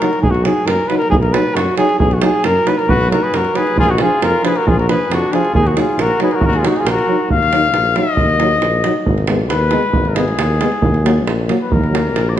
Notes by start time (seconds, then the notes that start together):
Already playing: F#4 A#4
0.01 F#3 D#4, davul high
0.13 davul high
0.22 B1 G#4, davul low
0.30 F#4
0.34 davul high
0.44 F#3 D#4 G#4, davul high
0.65 F#2 A#4, davul high
0.88 F#3 D#4 B4, davul high
0.98 A#4, davul high
1.10 B1 G#4, davul low
1.21 A#4, davul high
1.33 F#3 D#4 B4, davul high
1.55 F#2 F#4, davul high
1.77 F#3 D#4 G#4, davul high
1.89 davul high
1.99 B1 G#4, davul low
2.11 F#4, davul high
2.21 F#3 D#4 G#4, davul high
2.44 F#2 A#4, davul high
2.65 F#3 D#4 B4, davul high
2.78 A#4, davul high
2.88 B1 F#4 B4, davul low
3.01 davul high
3.09 F#3 D#4 F#4 A#4, davul high
3.22 G#4 B4, davul high
3.32 F#2 F#4 A#4, davul high
3.45 davul high
3.54 F#3 D#4 G#4 B4, davul high
3.67 davul high
3.76 A#1 F4 G#4, davul low
3.88 D#4 F#4, davul high
3.98 F3 D4 F4 G#4, davul high
4.22 F2 F4 A#4, davul high
4.43 F3 D4 G#4 B4, davul high
4.56 F#4 A#4, davul high
4.66 A#1 F4 G#4, davul low
4.78 F#4 A#4, davul high
4.87 F3 D4 G#4 B4, davul high
5.09 F2, davul high
5.13 D4 F#4
5.31 F3 D4 G#4, davul high
5.35 F4
5.45 davul high
5.53 D#2 G#4, davul low
5.59 D#4
5.67 D#4 F#4, davul high
5.76 F#3 D#4 F4 G#4, davul high
5.97 A#1 A#4, davul high
6.01 F#4
6.20 F#3 D#4 G#4 B4, davul high
6.31 A#4, davul high
6.35 F#4
6.41 D#2 A#4, davul low
6.47 F#4
6.53 G#4, davul high
6.59 F#3 F4
6.65 D#4 F#4, davul high
6.69 D#4
6.76 G#4, davul high
6.80 F4
6.84 A#1, davul high
6.89 F#4 A#4
6.99 davul high
7.08 F#3 D#4
7.29 D#2 F5, davul low
7.43 davul high
7.51 F#3 D#4, davul high
7.73 A#1, davul high
7.96 F#3 D#4 D#5, davul high
8.17 D#2, davul low
8.29 davul high
8.40 F#3 D#4, davul high
8.61 A#1, davul high
8.84 F#3 D#4, davul high
9.06 G#1, davul low
9.18 davul high
9.27 G#3 B3, davul high
9.50 D#2 B4, davul high
9.71 G#3 B3, davul high
9.93 G#1, davul low
10.05 A#4, davul high
10.15 G#3 B3 G#4, davul high
10.28 davul high
10.38 D#2, davul high
10.60 G#3 B3, davul high
10.72 davul high
10.81 D#2, davul low
10.94 davul high
11.04 F#3 A#3, davul high
11.25 A#1, davul high
11.48 F#3 A#3, davul high
11.62 B4
11.70 D#2 A#4, davul low
11.84 davul high
11.92 F#3 A#3, davul high
12.13 A#1, davul high
12.29 D5
12.36 F#3 A#3